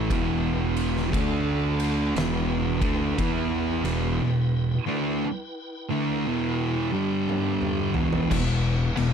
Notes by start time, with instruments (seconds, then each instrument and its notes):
Already playing: distorted electric guitar A3, tonewheel organ E4 B4 G5
0.10 fingered electric bass E1, distorted electric guitar E2 B2 E3, kick, ride
0.77 ride
0.97 snare
1.12 fingered electric bass D2, distorted electric guitar D3 A3 D4, tonewheel organ D4 A4 A5, kick, ride
1.80 ride
2.15 fingered electric bass E1, distorted electric guitar E2 B2 E3, tonewheel organ E4 B4 G5, snare, ride
2.81 fingered electric bass D2, distorted electric guitar D3 A3 D4, kick, ride
3.18 fingered electric bass E2, distorted electric guitar E3 B3 E4, kick, ride
3.83 fingered electric bass E1, distorted electric guitar E2 B2 E3, ride
4.21 distorted electric guitar E2 B2
4.86 distorted electric guitar D3 A3 D4
5.24 muted distorted electric guitar stroke
5.90 distorted electric guitar D3 A3 D4
6.27 distorted electric guitar E2 B2 E3
6.92 distorted electric guitar G2 D3 G3, tonewheel organ D4 G4
7.29 high tom
7.62 mid tom
7.94 distorted electric guitar E2 B2 E3, tonewheel organ E4 B4, mid tom
8.13 floor tom
8.31 fingered electric bass E1, distorted electric guitar E2 B2, tonewheel organ E4 B4 F#5, kick, crash
8.97 fingered electric bass E1, distorted electric guitar E2 B2, crash